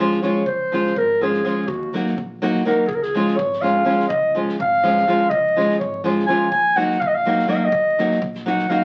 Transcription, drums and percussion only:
0.00 snare soft
0.11 snare soft
0.23 snare soft
0.46 kick medium
0.73 snare soft
0.86 snare soft
0.96 kick medium
1.22 snare soft
1.33 snare soft
1.46 snare soft
1.68 kick medium
1.95 snare soft
2.06 snare soft
2.18 kick medium
2.44 snare soft
2.55 snare soft
2.67 snare soft
2.89 kick loud
3.02 snare soft
3.15 snare soft
3.28 snare soft
3.39 kick loud
3.53 snare soft
3.65 snare soft
3.88 snare soft
4.00 snare soft
4.10 kick loud
4.49 snare soft
4.60 kick loud
4.86 snare soft
4.97 snare soft
5.08 snare soft
5.31 kick medium
5.59 snare soft
5.70 snare soft
5.81 kick medium
6.07 snare soft
6.19 snare soft
6.29 snare soft
6.52 kick medium
6.78 snare soft
6.91 snare soft
7.02 kick medium
7.28 snare soft
7.39 snare soft
7.50 snare soft
7.72 kick medium
7.98 snare soft
8.11 snare soft
8.22 kick medium
8.35 snare soft
8.47 snare soft
8.59 snare soft
8.69 snare soft

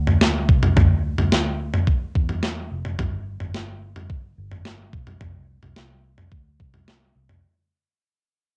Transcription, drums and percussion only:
0.07 floor tom soft
0.21 snare medium
0.49 kick medium
0.63 floor tom medium
0.77 kick loud
0.77 floor tom medium
1.18 floor tom soft
1.32 snare medium
1.74 floor tom medium
1.87 kick medium
2.15 kick medium
2.29 floor tom soft
2.43 snare loud
2.85 floor tom medium
2.99 kick medium
2.99 floor tom medium
3.40 floor tom soft
3.54 snare medium
3.96 floor tom medium
4.10 kick medium
4.51 floor tom soft
4.65 snare loud
4.93 kick medium
5.07 floor tom medium
5.21 kick medium
5.21 floor tom loud
5.63 floor tom soft
5.76 snare medium
6.18 floor tom medium
6.32 kick medium
6.60 kick medium
6.74 floor tom soft
6.88 snare loud
7.29 floor tom medium

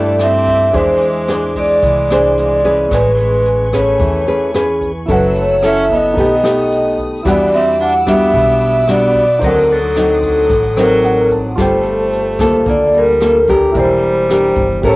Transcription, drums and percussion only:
0.19 cross-stick medium
0.19 closed hi-hat soft
0.47 kick soft
0.47 closed hi-hat soft
0.74 kick medium
0.74 closed hi-hat medium
1.01 closed hi-hat soft
1.28 cross-stick medium
1.28 closed hi-hat soft
1.55 kick soft
1.55 closed hi-hat soft
1.83 kick medium
1.83 closed hi-hat medium
2.10 cross-stick medium
2.10 closed hi-hat soft
2.37 closed hi-hat soft
2.64 kick soft
2.64 closed hi-hat soft
2.91 kick medium
2.91 cross-stick medium
2.91 closed hi-hat medium
3.19 closed hi-hat soft
3.46 closed hi-hat soft
3.73 kick soft
3.73 cross-stick medium
3.73 closed hi-hat soft
4.00 kick medium
4.00 closed hi-hat medium
4.27 closed hi-hat soft
4.54 cross-stick medium
4.54 closed hi-hat soft
4.81 kick soft
4.81 closed hi-hat soft
5.08 kick medium
5.08 closed hi-hat soft
5.36 closed hi-hat soft
5.63 cross-stick medium
5.63 closed hi-hat soft
5.90 kick soft
5.90 closed hi-hat soft
6.17 kick medium
6.17 closed hi-hat medium
6.45 cross-stick medium
6.45 closed hi-hat soft
6.72 closed hi-hat soft
6.98 kick soft
6.98 closed hi-hat soft
7.25 kick medium
7.25 cross-stick medium
7.25 closed hi-hat medium
7.52 closed hi-hat soft
7.80 closed hi-hat soft
8.07 kick soft
8.07 cross-stick medium
8.07 closed hi-hat soft
8.33 kick medium
8.33 closed hi-hat medium
8.61 closed hi-hat soft
8.87 cross-stick medium
8.87 closed hi-hat soft
9.15 kick soft
9.15 closed hi-hat soft
9.42 kick medium
9.42 closed hi-hat medium
9.69 closed hi-hat soft
9.95 cross-stick medium
9.95 closed hi-hat soft
10.22 kick soft
10.22 closed hi-hat soft
10.50 kick medium
10.50 closed hi-hat medium
10.77 cross-stick medium
10.77 closed hi-hat soft
11.04 closed hi-hat soft
11.30 kick soft
11.30 closed hi-hat soft
11.58 kick medium
11.58 cross-stick medium
11.58 closed hi-hat soft
11.85 closed hi-hat soft
12.12 closed hi-hat soft
12.39 kick medium
12.39 cross-stick medium
12.39 closed hi-hat soft
12.66 kick medium
12.66 closed hi-hat soft
12.94 closed hi-hat soft
13.21 cross-stick medium
13.21 closed hi-hat soft
13.48 kick medium
13.48 closed hi-hat soft
13.75 kick medium
13.75 closed hi-hat soft
14.02 closed hi-hat soft
14.30 cross-stick medium
14.30 closed hi-hat soft
14.56 kick medium
14.56 closed hi-hat soft
14.83 kick medium
14.83 closed hi-hat soft

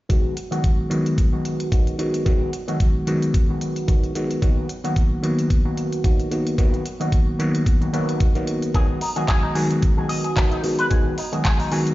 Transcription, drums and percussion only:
0.10 kick loud
0.10 closed hi-hat medium
0.37 closed hi-hat medium
0.52 closed hi-hat soft
0.64 kick loud
0.64 closed hi-hat medium
0.91 closed hi-hat medium
1.06 closed hi-hat soft
1.18 kick loud
1.18 closed hi-hat medium
1.45 closed hi-hat medium
1.60 closed hi-hat soft
1.72 kick loud
1.72 closed hi-hat medium
1.87 closed hi-hat soft
1.99 closed hi-hat medium
2.14 closed hi-hat soft
2.26 kick loud
2.26 closed hi-hat medium
2.53 closed hi-hat medium
2.68 closed hi-hat soft
2.80 kick loud
2.80 closed hi-hat medium
3.07 closed hi-hat medium
3.22 closed hi-hat soft
3.34 kick loud
3.34 closed hi-hat medium
3.61 closed hi-hat medium
3.76 closed hi-hat soft
3.88 kick loud
3.88 closed hi-hat medium
4.04 closed hi-hat soft
4.15 closed hi-hat medium
4.31 closed hi-hat soft
4.42 kick loud
4.42 closed hi-hat medium
4.69 closed hi-hat medium
4.85 closed hi-hat soft
4.96 kick loud
4.96 closed hi-hat medium
5.24 closed hi-hat medium
5.39 closed hi-hat soft
5.50 kick loud
5.50 closed hi-hat medium
5.77 closed hi-hat medium
5.93 closed hi-hat soft
6.04 kick loud
6.04 closed hi-hat medium
6.20 closed hi-hat soft
6.32 closed hi-hat medium
6.47 closed hi-hat soft
6.58 kick loud
6.58 closed hi-hat medium
6.74 closed hi-hat soft
6.86 closed hi-hat medium
7.01 closed hi-hat soft
7.12 kick loud
7.12 closed hi-hat medium
7.40 closed hi-hat medium
7.55 closed hi-hat soft
7.66 kick loud
7.66 closed hi-hat medium
7.82 closed hi-hat soft
7.94 closed hi-hat medium
8.09 closed hi-hat soft
8.20 kick loud
8.20 closed hi-hat medium
8.35 closed hi-hat soft
8.47 closed hi-hat medium
8.62 closed hi-hat soft
8.74 kick loud
8.74 closed hi-hat medium
9.01 open hi-hat medium
9.16 closed hi-hat soft
9.28 kick loud
9.28 clap loud
9.28 closed hi-hat medium
9.56 open hi-hat loud
9.71 closed hi-hat soft
9.82 kick loud
9.82 closed hi-hat medium
10.09 open hi-hat medium
10.24 closed hi-hat soft
10.37 kick loud
10.37 clap loud
10.37 closed hi-hat medium
10.52 closed hi-hat soft
10.64 open hi-hat medium
10.79 closed hi-hat soft
10.91 kick loud
10.91 closed hi-hat medium
11.18 open hi-hat medium
11.33 closed hi-hat soft
11.45 kick loud
11.45 clap loud
11.45 closed hi-hat medium
11.60 open hi-hat medium
11.72 open hi-hat medium
11.87 closed hi-hat soft

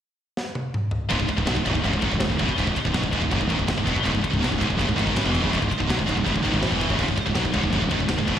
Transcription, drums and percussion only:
0.37 snare medium
0.55 high tom medium
0.74 mid tom medium
0.91 floor tom medium
1.10 kick medium
1.10 ride medium
1.20 kick medium
1.29 kick medium
1.29 ride medium
1.38 kick medium
1.47 kick medium
1.47 snare loud
1.47 ride medium
1.56 kick medium
1.66 kick medium
1.66 ride medium
1.75 kick medium
1.84 kick medium
1.84 ride medium
1.93 kick medium
2.02 kick medium
2.02 ride medium
2.12 kick medium
2.20 kick medium
2.20 snare loud
2.20 ride loud
2.30 kick medium
2.39 kick medium
2.39 ride medium
2.49 kick medium
2.58 kick medium
2.58 ride loud
2.67 kick medium
2.76 kick medium
2.76 ride medium
2.85 kick medium
2.94 kick medium
2.94 snare loud
2.94 ride medium
3.04 kick medium
3.13 kick medium
3.13 ride medium
3.22 kick medium
3.31 kick medium
3.31 ride medium
3.41 kick medium
3.50 kick medium
3.50 ride medium
3.59 kick medium
3.68 kick medium
3.68 snare loud
3.68 ride loud
3.78 kick medium
3.87 kick medium
3.87 ride medium
3.96 kick medium
4.05 kick medium
4.05 ride loud
4.15 kick medium
4.24 kick medium
4.24 ride medium
4.34 kick medium
4.43 kick medium
4.43 snare loud
4.43 ride medium
4.52 kick medium
4.61 kick medium
4.61 ride medium
4.70 kick medium
4.79 kick medium
4.79 ride loud
4.89 kick medium
4.98 kick medium
4.98 ride medium
5.07 kick medium
5.16 kick medium
5.16 snare loud
5.16 ride loud
5.26 kick medium
5.35 kick medium
5.35 ride medium
5.44 kick medium
5.53 kick medium
5.53 ride loud
5.62 kick medium
5.71 kick medium
5.71 ride medium
5.80 kick medium
5.90 kick medium
5.90 snare loud
5.90 ride medium
5.99 kick medium
6.08 kick medium
6.08 ride medium
6.17 kick medium
6.26 kick medium
6.26 ride loud
6.36 kick medium
6.45 kick medium
6.45 ride medium
6.54 kick medium
6.63 kick medium
6.63 snare loud
6.63 ride medium
6.72 kick medium
6.81 kick medium
6.81 ride medium
6.90 kick medium
6.99 kick medium
6.99 crash loud
7.08 kick medium
7.17 kick medium
7.17 ride medium
7.27 kick medium
7.35 kick medium
7.35 snare loud
7.35 ride medium
7.45 kick medium
7.53 kick medium
7.53 ride medium
7.63 kick medium
7.73 kick medium
7.73 ride medium
7.82 kick medium
7.91 kick medium
7.91 ride medium
8.00 kick medium
8.09 kick medium
8.09 snare loud
8.09 ride loud
8.19 kick medium
8.28 kick medium
8.28 ride medium

